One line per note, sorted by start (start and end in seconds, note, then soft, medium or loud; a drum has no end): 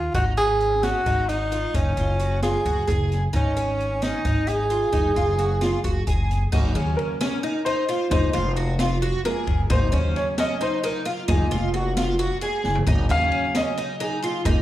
0.00 0.11 F4 medium
0.14 0.92 G#1 medium
0.14 0.32 D#4 medium
0.14 0.25 F#4 medium
0.14 kick medium
0.14 closed hi-hat medium
0.37 0.73 C#4 medium
0.37 0.85 G#4 medium
0.37 closed hi-hat soft
0.60 closed hi-hat soft
0.83 1.01 C#4 medium
0.83 1.30 F#4 medium
0.83 snare medium
0.83 closed hi-hat medium
1.06 1.63 G#1 medium
1.06 1.24 D#4 medium
1.06 kick medium
1.06 closed hi-hat soft
1.29 1.77 D#4 medium
1.29 1.47 D#4 medium
1.29 closed hi-hat medium
1.52 1.69 F4 medium
1.52 closed hi-hat medium
1.74 1.94 F#1 medium
1.74 2.43 C#4 medium
1.74 1.92 D#4 medium
1.74 kick medium
1.74 closed hi-hat medium
1.97 2.55 F#1 medium
1.97 2.15 F4 medium
1.97 kick medium
1.97 snare soft
1.97 closed hi-hat medium
2.20 2.37 F#4 medium
2.20 closed hi-hat medium
2.42 2.60 F4 medium
2.42 3.07 G#4 medium
2.42 snare medium
2.42 closed hi-hat medium
2.65 2.85 F#1 medium
2.65 2.83 F#4 medium
2.65 kick medium
2.65 closed hi-hat soft
2.87 3.27 F#1 medium
2.87 3.23 G#4 medium
2.87 kick medium
2.87 snare soft
2.87 closed hi-hat medium
3.12 snare soft
3.12 closed hi-hat medium
3.33 4.11 G#1 medium
3.33 4.05 C#4 medium
3.33 3.51 D#4 medium
3.33 kick medium
3.33 closed hi-hat medium
3.57 3.92 C#4 medium
3.57 closed hi-hat medium
3.80 closed hi-hat soft
4.02 4.20 C#4 medium
4.02 4.50 D#4 medium
4.02 snare medium
4.02 closed hi-hat medium
4.25 4.83 G#1 medium
4.25 4.42 D#4 medium
4.25 kick medium
4.25 closed hi-hat soft
4.47 4.65 D#4 medium
4.47 6.07 G#4 medium
4.47 closed hi-hat medium
4.70 4.88 F4 medium
4.70 closed hi-hat soft
4.93 5.12 F#1 medium
4.93 5.10 D#4 medium
4.93 kick medium
4.93 closed hi-hat medium
5.15 5.73 F#1 medium
5.15 5.34 F4 medium
5.15 kick medium
5.15 closed hi-hat medium
5.38 5.56 F#4 medium
5.38 snare soft
5.38 closed hi-hat soft
5.61 5.79 F4 medium
5.61 snare medium
5.61 closed hi-hat medium
5.84 6.03 F#1 medium
5.84 6.02 F#4 medium
5.84 kick medium
5.84 closed hi-hat soft
6.07 6.46 F#1 medium
6.07 6.42 G#4 medium
6.07 kick medium
6.07 closed hi-hat medium
6.31 snare soft
6.31 closed hi-hat medium
6.52 6.72 G#1 medium
6.52 7.17 C#3 medium
6.52 7.17 F#3 soft
6.52 7.18 A#3 medium
6.52 6.70 D#4 medium
6.52 6.76 F#4 medium
6.52 kick medium
6.52 crash loud
6.75 6.94 D#2 medium
6.75 7.10 C#4 medium
6.75 6.98 G#4 medium
6.75 ride medium
6.97 7.61 A#4 medium
6.97 ride medium
7.21 7.38 C#4 medium
7.21 snare loud
7.21 ride medium
7.43 7.61 D#4 medium
7.43 ride medium
7.65 7.83 D#4 medium
7.65 8.10 C5 loud
7.65 ride medium
7.89 8.06 F4 medium
7.89 snare soft
7.89 ride medium
8.10 8.21 F#1 loud
8.10 8.41 F3 medium
8.10 8.41 G#3 soft
8.10 8.42 A#3 medium
8.10 8.29 D#4 medium
8.10 8.54 C5 medium
8.10 kick loud
8.10 ride medium
8.33 9.11 F1 medium
8.33 8.51 F4 medium
8.33 snare soft
8.33 ride medium
8.56 8.74 F#4 medium
8.56 ride medium
8.79 8.97 F4 medium
8.79 snare loud
8.79 ride medium
9.02 9.20 F#4 medium
9.02 ride medium
9.24 9.45 F3 soft
9.24 9.45 G#3 soft
9.24 9.46 A#3 soft
9.24 9.60 G#4 medium
9.24 9.67 A#4 medium
9.24 snare soft
9.24 ride medium
9.47 9.66 F#1 medium
9.47 kick medium
9.47 ride medium
9.70 9.89 G#1 loud
9.70 11.25 C#3 medium
9.70 11.25 F#3 soft
9.70 11.25 A#3 medium
9.70 9.88 D#4 medium
9.70 10.13 C5 loud
9.70 kick loud
9.70 ride medium
9.92 10.12 D#2 medium
9.92 10.27 C#4 medium
9.92 ride medium
10.16 10.37 C#5 loud
10.16 snare soft
10.16 ride medium
10.38 10.56 C#4 medium
10.38 10.62 D#5 loud
10.38 snare loud
10.38 ride medium
10.61 10.78 D#4 medium
10.61 10.83 C5 medium
10.61 snare soft
10.61 ride medium
10.84 11.01 D#4 medium
10.84 11.31 A#4 medium
10.84 snare soft
10.84 ride medium
11.05 11.23 F4 medium
11.05 snare soft
11.05 ride medium
11.28 11.38 F#1 loud
11.28 12.83 G#3 soft
11.28 12.84 A#3 medium
11.28 11.46 D#4 medium
11.28 12.83 F4 medium
11.28 11.76 G#4 medium
11.28 kick loud
11.28 ride medium
11.51 12.28 F1 medium
11.51 11.69 F4 medium
11.51 snare soft
11.51 ride medium
11.74 11.91 F#4 medium
11.74 12.45 F#4 medium
11.74 ride medium
11.97 12.14 F4 medium
11.97 snare loud
11.97 ride medium
12.19 12.37 F#4 medium
12.19 snare soft
12.19 ride medium
12.41 12.77 G#4 medium
12.41 12.64 G#4 medium
12.41 ride medium
12.64 12.84 F#1 medium
12.64 snare medium
12.75 floor tom medium
12.86 13.06 G#1 medium
12.86 14.42 C#3 medium
12.86 14.43 F#3 soft
12.86 14.43 A#3 medium
12.86 13.05 D#4 medium
12.86 kick loud
12.86 ride medium
13.09 13.29 D#2 medium
13.09 13.45 C#4 medium
13.09 13.53 F5 loud
13.09 ride medium
13.32 ride medium
13.55 13.73 C#4 medium
13.55 13.98 D#5 loud
13.55 snare loud
13.55 ride medium
13.77 13.95 D#4 medium
13.77 ride medium
14.00 14.18 D#4 medium
14.00 14.43 G#4 medium
14.00 ride medium
14.22 14.41 F4 medium
14.22 snare soft
14.22 ride medium
14.45 14.55 F#1 loud
14.45 14.62 F3 medium
14.45 14.62 G#3 soft
14.45 14.62 A#3 medium
14.45 14.62 D#4 medium
14.45 kick loud
14.45 ride medium